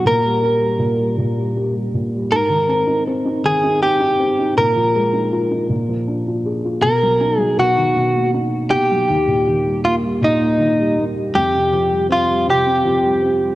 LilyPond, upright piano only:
\new Staff \with { instrumentName = "Upright piano" } { \clef bass \time 6/8 \key ees \major \tempo 4. = 53 bes,16 g16 g'16 g16 bes,16 g16 bes,16 g16 g'16 g16 bes,16 g16 | aes,16 ees16 c'16 ees'16 c'16 ees'16 ees16 ees'16 c'16 ees'16 c'16 ees'16 | bes,16 f16 aes16 ees'16 f'16 ees'16 bes,16 f16 d'16 f'16 aes'16 f'16 | b,16 fis16 dis'16 fis16 b,16 dis16 b,16 ais16 dis'8 b,16 fis16 |
ees,16 bes,16 ees16 g16 bes16 g16 bes,16 bes16 ees16 g16 bes16 g16 | f,16 c16 f16 g16 c'16 g16 c16 c'16 f16 g16 c'16 g16 | }